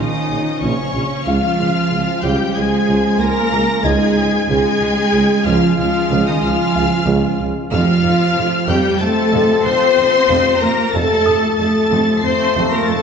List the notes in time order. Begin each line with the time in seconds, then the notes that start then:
Already playing: A#1 D#3 F3 C#4 D#4 D#5 D#6
0.29 A#1
0.62 A#1 C#3 C#4 C#5 C#6
0.94 A#1
1.26 C#2 F3 G#3 F4 F5 F6
1.58 C#2
1.90 C#2
2.23 C#2 G3 G4 G5 G6
2.55 C#2 G#3 G#4 G#5 G#6
2.87 C#2
3.19 C#2 A#3 A#4 A#5 A#6
3.52 C#2
3.84 C#2 G#3 D#4 G#4 D#5 G#5 G#6
4.16 C#2
4.49 C#2 F3 G#3 G#4 G#5 G#6
4.81 C#2
5.14 C#2
5.46 C#2 F3 F4 F5 F6
5.78 C#2 F3 F4 F5 F6
6.10 C#2
6.26 D#3 D#4 D#5 D#6
6.43 C#2 F3 F4 F5 F6
6.75 C#2 F5
7.07 C#2
7.39 C#2
7.71 F1 F2 F3 C4 F4 F5 F6
8.04 F1 F2
8.36 F1 F2
8.68 F1 F2 G3 G4 G5 G6
9.01 F1 F2 A3 A4 A5 A6
9.33 F1 F2
9.65 F1 F2 C4 C5 C6 C7
9.97 F1 F2
10.29 F1 F2
10.61 F1 F2 A#3 A#4 A#5 A#6
10.94 F1 F2 F3 A3 A4 A5 A6
11.26 F1 F2 D#6
11.58 F1 F2 A3 A4 A5 A6
11.91 F1 F2
12.23 F1 F2 C4 C5 C6 C7
12.56 F1 F2
12.71 A#3 A#4 A#5 A#6
12.87 F1 F2 A3 A4 A5 A6